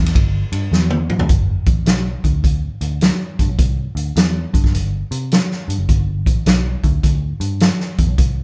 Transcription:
Already playing: E2
0.06 snare, ride
0.15 G1, kick, ride
0.52 G2, ride
0.72 E2, snare
0.90 high tom
1.10 mid tom
1.19 D2, floor tom
1.29 G1, kick, closed hi-hat
1.66 A1, kick, closed hi-hat
1.86 B1, snare, closed hi-hat
2.24 D2, kick, closed hi-hat
2.44 kick, closed hi-hat
2.81 D2, closed hi-hat
3.01 snare, closed hi-hat
3.39 G2, kick, closed hi-hat
3.48 B1
3.58 C2, kick, closed hi-hat
3.95 D2, closed hi-hat
4.16 E2, snare, closed hi-hat
4.54 G2, kick, closed hi-hat
4.64 kick, snare
4.74 G1, closed hi-hat
5.11 C3, closed hi-hat
5.31 snare, closed hi-hat
5.51 snare
5.68 G2, closed hi-hat
5.78 F#1
5.89 G1, kick, closed hi-hat
6.26 A1, kick, closed hi-hat
6.46 B1, snare, closed hi-hat
6.83 D2, kick, closed hi-hat
7.03 D2, kick, closed hi-hat
7.40 G2, closed hi-hat
7.60 snare, closed hi-hat
7.80 snare
7.98 E2, kick, closed hi-hat
8.07 B1
8.18 C2, kick, closed hi-hat

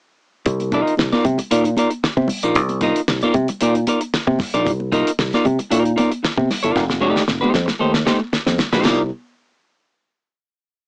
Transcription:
0.46 C2, kick, closed hi-hat, muted conga
0.60 closed hi-hat, muted conga
0.71 D#4 F4 A#4 D#5, kick, closed hi-hat, high conga
0.87 closed hi-hat
0.97 C2, muted clean electric guitar stroke, snare, muted conga
1.12 D#4 F4 A#4 D5, snare, closed hi-hat, muted conga, high conga
1.24 C3, muted clean electric guitar stroke, kick, closed hi-hat, low conga
1.38 muted clean electric guitar stroke, closed hi-hat, low conga
1.51 A#2 D#4 F4 A#4 D5, closed hi-hat, muted conga
1.64 muted clean electric guitar stroke, closed hi-hat, muted conga
1.77 D#4 F4 A#4 D5, closed hi-hat, high conga
1.90 muted clean electric guitar stroke, closed hi-hat
2.03 muted clean electric guitar stroke, snare
2.17 C3, muted clean electric guitar stroke, kick, high conga
2.28 open hi-hat, low conga
2.43 A#1 D#4 F4 A#4 D5, closed hi-hat
2.55 C2, kick, closed hi-hat, muted conga
2.69 closed hi-hat, muted conga
2.81 D#4 F4 A#4 D#5, kick, closed hi-hat, high conga
2.96 closed hi-hat
3.08 C2, muted clean electric guitar stroke, snare, muted conga
3.22 D#4 F4 A#4 D5, closed hi-hat, muted conga, high conga
3.34 C3, kick, closed hi-hat, low conga
3.48 muted clean electric guitar stroke, closed hi-hat, low conga
3.61 A#2 D#4 F4 A#4 D5, closed hi-hat, muted conga
3.75 muted clean electric guitar stroke, closed hi-hat, muted conga
3.87 D#4 F4 A#4 D5, closed hi-hat, high conga
4.01 muted clean electric guitar stroke, closed hi-hat
4.14 muted clean electric guitar stroke, snare
4.27 C3, muted clean electric guitar stroke, kick, muted conga, high conga
4.39 kick, snare, open hi-hat, low conga
4.54 A#1 D#4 F4 A#4 D5, closed hi-hat
4.65 C2, kick, closed hi-hat, muted conga
4.80 muted conga
4.92 D#4 F4 A#4 D#5, kick, closed hi-hat, high conga
5.07 closed hi-hat
5.19 C2, muted clean electric guitar stroke, snare, muted conga
5.33 D#4 F4 A#4 D5, snare, closed hi-hat, muted conga, high conga
5.45 C3, muted clean electric guitar stroke, kick, closed hi-hat, low conga
5.59 muted clean electric guitar stroke, closed hi-hat, low conga
5.70 A#2 D#4 F4 A#4 D5, closed hi-hat
5.84 muted clean electric guitar stroke, closed hi-hat
5.96 D#4 F4 A#4 D5, closed hi-hat, high conga
6.12 muted clean electric guitar stroke, closed hi-hat
6.23 muted clean electric guitar stroke, snare
6.38 C3, muted clean electric guitar stroke, kick, muted conga, high conga
6.51 snare, open hi-hat, low conga
6.63 G1 D#4 F4 A#4 D5, closed hi-hat
6.76 F1, kick, snare, muted conga
6.90 snare, muted conga
7.01 A3 D#4 G4 D5
7.16 snare
7.28 F1, muted clean electric guitar stroke, snare, muted conga
7.41 A3 D#4 G4 C5, muted conga, high conga
7.53 F2, muted clean electric guitar stroke, snare, low conga
7.66 muted clean electric guitar stroke, snare, low conga
7.79 D#2 A3 D#4 G4 C5, muted conga
7.94 muted clean electric guitar stroke, snare
8.05 A3 D#4 G4 C5, snare, high conga
8.20 muted clean electric guitar stroke
8.33 muted clean electric guitar stroke, snare
8.46 F2, muted clean electric guitar stroke, snare, high conga
8.58 snare, low conga
8.72 A#1 A3 D#4 G4 C5, snare
8.84 C2 D#4 F4 A#4 D5, snare, splash, high conga

